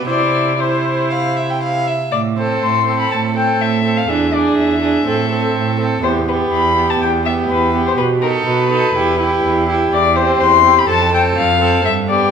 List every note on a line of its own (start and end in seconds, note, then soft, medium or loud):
0.07 1.87 C3 soft
0.07 0.58 E4 soft
0.07 0.53 C5 soft
0.07 0.61 D5 medium
0.58 1.88 E4 soft
0.58 1.12 C5 soft
0.58 1.61 C5 medium
1.10 1.37 F5 soft
1.36 1.51 E5 soft
1.50 1.62 G5 soft
1.63 1.89 F5 soft
1.87 2.12 E5 soft
2.11 2.55 A2 soft
2.11 2.20 D5 medium
2.37 2.85 C4 soft
2.37 2.85 A4 soft
2.37 2.64 C5 soft
2.61 3.05 A2 soft
2.61 2.99 C6 medium
2.86 3.34 C4 soft
2.86 3.35 A4 soft
3.00 3.11 B5 medium
3.11 3.54 A2 soft
3.11 3.20 A5 medium
3.36 3.84 C4 soft
3.36 3.84 A4 soft
3.36 3.63 G5 medium
3.59 4.03 A2 soft
3.59 3.99 E5 medium
3.84 4.09 C4 soft
3.84 4.08 A4 soft
3.97 4.10 F5 medium
4.08 4.51 E2 soft
4.08 4.32 D4 soft
4.08 4.32 G#4 soft
4.08 4.35 E5 medium
4.33 4.81 D4 soft
4.33 4.81 G#4 soft
4.33 4.58 D5 medium
4.56 5.00 E2 soft
4.56 5.77 E5 medium
4.82 5.06 D4 soft
4.82 5.06 G#4 soft
5.05 5.49 A2 soft
5.05 5.30 C4 soft
5.05 5.30 A4 soft
5.30 5.78 C4 soft
5.30 5.78 A4 soft
5.54 5.97 A2 medium
5.79 6.03 C4 soft
5.79 6.03 A4 soft
6.02 6.45 E2 medium
6.02 6.27 B3 soft
6.02 6.28 G4 soft
6.02 6.11 C5 medium
6.27 6.75 B3 soft
6.27 6.76 G4 soft
6.27 6.36 B4 soft
6.51 6.94 E2 medium
6.51 6.92 B5 medium
6.76 7.24 B3 soft
6.76 7.24 G4 soft
6.90 7.01 A5 medium
7.00 7.43 E2 medium
7.00 7.10 G5 medium
7.25 7.73 B3 soft
7.25 7.73 G4 soft
7.25 7.33 E5 medium
7.49 7.92 E2 medium
7.49 7.85 B4 medium
7.73 7.97 B3 soft
7.73 7.98 G4 soft
7.87 7.91 C5 medium
7.97 8.41 B2 medium
7.97 8.05 B4 medium
8.22 8.70 D#4 soft
8.22 8.71 A4 soft
8.22 8.30 A#4 medium
8.46 8.89 B2 medium
8.46 9.66 B4 medium
8.71 8.95 D#4 soft
8.71 8.95 A4 soft
8.95 9.38 E2 medium
8.95 9.19 E4 medium
8.95 9.20 G4 medium
9.19 9.67 E4 soft
9.19 9.67 G4 soft
9.44 9.86 E2 medium
9.68 9.91 E4 soft
9.68 9.92 G4 soft
9.92 10.34 E2 medium
9.92 10.17 D5 medium
10.16 10.63 C4 medium
10.16 10.63 G4 soft
10.16 10.42 C5 medium
10.40 10.82 E2 medium
10.40 10.80 C6 medium
10.64 10.87 C4 medium
10.64 10.87 G4 soft
10.78 10.89 B5 medium
10.88 11.30 F2 medium
10.88 11.11 C4 soft
10.88 11.11 A4 medium
10.88 11.12 A5 medium
11.12 11.60 C4 medium
11.12 11.60 A4 soft
11.12 11.22 G5 medium
11.36 11.79 F2 medium
11.36 11.84 F5 medium
11.60 11.84 C4 soft
11.60 11.84 A4 medium
11.84 12.26 G2 medium
11.84 11.93 E5 medium
12.08 12.31 B3 soft
12.08 12.31 G4 medium
12.08 12.31 D5 medium